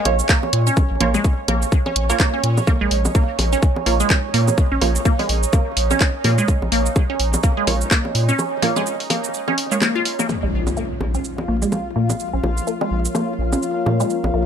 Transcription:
Already playing: synth texture C#4 C#5, ambient pad C#5
0.05 analog synth bass A#1, synth stab A#3 F4 C#5, closed hi-hat, low bongo
0.19 shaker
0.29 synth arpeggio sound A#3, kick, clap, shaker
0.43 low bongo
0.53 analog synth bass A#2, closed hi-hat
0.67 synth arpeggio sound C#4, shaker
0.77 kick, low bongo, shaker
0.91 analog synth bass A#1
1.00 analog synth bass A#1, synth arpeggio sound A#3, synth stab A#3 F4 C#5, closed hi-hat, low conga
1.14 synth arpeggio sound G#3, low bongo, shaker
1.24 kick, shaker
1.48 analog synth bass A#1, synth arpeggio sound A#3, closed hi-hat, low bongo
1.62 shaker
1.72 kick, shaker
1.86 synth arpeggio sound C#4, low bongo
1.96 analog synth bass A#1, closed hi-hat
2.10 synth arpeggio sound A#3, synth stab A#3 F4 C#5, shaker
2.20 synth arpeggio sound A#3, kick, clap, low bongo, shaker
2.34 synth arpeggio sound C#4
2.44 analog synth bass A#2, closed hi-hat
2.57 low bongo, shaker
2.67 synth arpeggio sound A#3, synth texture D#4, kick, low bongo, shaker
2.81 analog synth bass A#1, synth arpeggio sound G#3
2.91 analog synth bass A#1, open hi-hat
3.05 low bongo, shaker
3.15 synth arpeggio sound A#3, kick, shaker
3.39 analog synth bass A#1, open hi-hat, low bongo
3.53 synth arpeggio sound C#4, shaker
3.63 kick, shaker
3.76 low bongo
3.86 analog synth bass A#1, synth arpeggio sound A#3, synth stab A#3 F4 C#5, open hi-hat
4.00 synth arpeggio sound G#3, shaker
4.10 kick, clap, low bongo, shaker
4.34 analog synth bass A#2, synth arpeggio sound A#3, open hi-hat
4.48 low bongo, shaker
4.58 kick, shaker
4.72 analog synth bass A#1, synth arpeggio sound C#4
4.81 analog synth bass A#1, synth stab A#3 F4 C#5, open hi-hat, low bongo
4.95 shaker
5.05 synth arpeggio sound A#3, kick, shaker
5.19 synth arpeggio sound G#3, open hi-hat, low bongo
5.29 analog synth bass A#1, open hi-hat
5.43 shaker
5.53 synth arpeggio sound A#3, kick, low bongo, shaker
5.77 analog synth bass A#1, open hi-hat
5.91 synth arpeggio sound C#4, low bongo, shaker
6.00 kick, clap, shaker
6.24 analog synth bass A#2, synth arpeggio sound A#3, open hi-hat, low bongo
6.38 synth arpeggio sound G#3, shaker
6.48 kick, shaker
6.62 analog synth bass A#1, low bongo
6.72 analog synth bass A#1, synth arpeggio sound A#3, open hi-hat
6.86 shaker
6.96 kick, low bongo, shaker
7.10 synth arpeggio sound C#4
7.20 analog synth bass A#1, open hi-hat
7.33 low bongo, shaker
7.43 synth arpeggio sound A#3, kick, shaker
7.57 synth arpeggio sound G#3
7.67 analog synth bass A#1, synth stab A#3 F4 C#5, open hi-hat, low bongo
7.81 shaker
7.91 synth arpeggio sound A#3, kick, clap, shaker
8.05 low bongo
8.15 analog synth bass A#2, open hi-hat
8.29 synth arpeggio sound C#4, shaker
8.39 low bongo, shaker
8.62 synth arpeggio sound A#3, synth stab A#3 F4 C#5, open hi-hat, low conga
8.76 synth arpeggio sound G#3, low bongo, shaker
8.86 shaker
9.00 open hi-hat
9.10 synth arpeggio sound A#3, open hi-hat, low bongo
9.24 shaker
9.34 shaker
9.48 synth arpeggio sound C#4, low bongo
9.58 open hi-hat
9.72 synth arpeggio sound G#3, synth stab A#3 F4 C#5, shaker
9.81 synth arpeggio sound A#3, clap, low bongo, shaker
9.95 synth arpeggio sound F4
10.05 open hi-hat
10.19 synth arpeggio sound A#3, low bongo, shaker
10.29 synth arpeggio sound A#3, ambient pad F4, synth texture F4 F5, impact, low bongo, shaker
10.43 analog synth bass A#1, synth arpeggio sound G#3
10.47 ambient pad A#4
10.53 analog synth bass A#1
10.67 low bongo, shaker
10.77 synth arpeggio sound A#3, shaker
11.01 analog synth bass A#1, low bongo
11.08 ambient pad C#5
11.15 synth arpeggio sound C#4, shaker
11.24 shaker
11.38 low bongo
11.48 analog synth bass A#1, synth arpeggio sound A#3, synth stab A#3 F4 C#5
11.62 synth arpeggio sound G#3, shaker
11.72 low bongo, shaker
11.96 analog synth bass A#2, synth arpeggio sound A#3
12.10 low bongo, shaker
12.19 ambient pad A#5, shaker
12.33 analog synth bass A#1, synth arpeggio sound C#4
12.43 analog synth bass A#1, synth stab A#3 F4 C#5, low bongo
12.57 shaker
12.67 synth arpeggio sound A#3, shaker
12.81 synth arpeggio sound G#3, low bongo
12.91 analog synth bass A#1
13.05 shaker
13.15 synth arpeggio sound A#3, low bongo, shaker
13.39 analog synth bass A#1
13.52 synth arpeggio sound C#4, low bongo, shaker
13.63 shaker
13.86 analog synth bass A#2, synth arpeggio sound A#3, low bongo
14.00 synth arpeggio sound G#3, shaker
14.10 riser, shaker
14.24 analog synth bass A#1, low bongo
14.34 analog synth bass A#1, synth arpeggio sound A#3

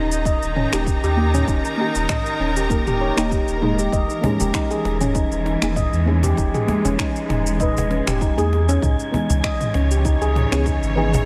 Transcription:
Already playing: sub bass D#1, string section D#3 D#4 D#5 A#5, synth stab A#3 G4
0.12 shaker
0.25 handpan D#5, kick, shaker
0.42 sub bass D#1, shaker
0.56 handpan C#4, mid tom
0.71 sub bass D#1, synth stab A#3 D#4 G4, handpan G4, string section A#4, finger snap, shaker
0.87 kick, shaker
1.03 sub bass D#2, handpan G4, shaker
1.17 synth stab A#3 D#4 G4
1.34 handpan C#4, mid tom, shaker
1.48 sub bass D#1, handpan D#4, kick, shaker
1.65 shaker
1.77 synth stab A#3 D#4 G4, handpan D#4
1.95 sub bass D#1, shaker
2.09 handpan D#5, finger snap, kick, mid tom, shaker
2.26 shaker
2.40 sub bass D#1, handpan C#4
2.57 handpan G4, shaker
2.69 synth stab A#3 D#4 A#4, kick, shaker
2.87 sub bass D#1, handpan G4, mid tom, shaker
3.01 handpan C#5
3.17 sub bass D#1, synth stab A#3 D#4 G4, handpan D#4, finger snap, shaker
3.31 handpan G4, kick, shaker
3.48 sub bass D#1, shaker
3.61 synth stab G#3 A#3 D#4, handpan D#4, mid tom
3.79 handpan G4, shaker
3.92 sub bass E1, string section E3, handpan D#5, synth texture G#5, kick, shaker
4.10 shaker
4.21 synth stab A#3 D#4, handpan C#4, cajon bass, mid tom
4.25 synth stab G#3
4.40 sub bass E1, handpan G4, cajon bass, shaker
4.54 handpan D#4, finger snap, kick, shaker
4.71 handpan G#4, shaker
4.85 sub bass E1, cajon slap
4.92 string section G#3
5.01 handpan C#4, mid tom, shaker
5.15 handpan D#4, kick, shaker
5.32 sub bass E1, shaker
5.46 handpan D#4, cajon slap
5.62 sub bass E1, synth stab A#3 D#4 G#4, finger snap, shaker
5.76 handpan D#5, kick, mid tom, shaker
5.93 sub bass E2, shaker
6.06 synth stab G#3 A#3 D#4, handpan C#4
6.23 handpan G4, cajon bass, shaker
6.37 sub bass E1, handpan D#4, kick, shaker
6.54 handpan G#4, mid tom, shaker
6.67 synth stab A#3 D#4, cajon bass, cajon slap
6.71 synth stab G#3
6.85 sub bass E1, handpan C#4, cajon bass, shaker
6.99 handpan D#4, finger snap, kick, shaker
7.16 shaker
7.29 sub bass E1, handpan D#4, cajon slap, mid tom
7.46 shaker
7.58 synth stab A#2 D#4, handpan D#5, kick, shaker
7.62 synth stab B4
7.77 sub bass E1, cajon bass, shaker
7.91 handpan C#4, cajon slap
8.07 sub bass E1, handpan G4, finger snap, mid tom, shaker
8.21 handpan D#4, kick, shaker
8.37 sub bass E2, synth stab A#3 D#4 G#4, handpan G#4, cajon slap, shaker
8.53 cajon slap
8.69 handpan C#4, shaker
8.82 sub bass C#2, string section C#3, handpan D#4, kick, mid tom, shaker
8.99 shaker
9.12 synth stab E3 G#3 B3, handpan D#4, cajon bass
9.25 string section E3
9.30 sub bass C#2, cajon bass, shaker
9.44 handpan D#5, finger snap, kick, shaker
9.61 mid tom, shaker
9.71 sub bass C#2, handpan C#4, string section C#5, cajon slap
9.91 handpan G4, shaker
10.05 handpan D#4, kick, shaker
10.21 sub bass C#2, handpan G#4, shaker
10.35 cajon slap, mid tom
10.52 sub bass C#2, synth stab B3 E4 G#4, handpan C#4, finger snap, shaker
10.66 handpan D#4, kick, shaker
10.83 sub bass G#1, shaker
10.96 synth stab E3 B3 G#4, handpan D#4
11.14 cajon bass, mid tom, shaker

